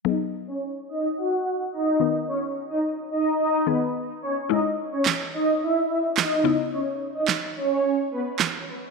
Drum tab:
CP |--------|--------|--x---x-|--x---x-|
SD |--------|--------|--o---o-|--o---o-|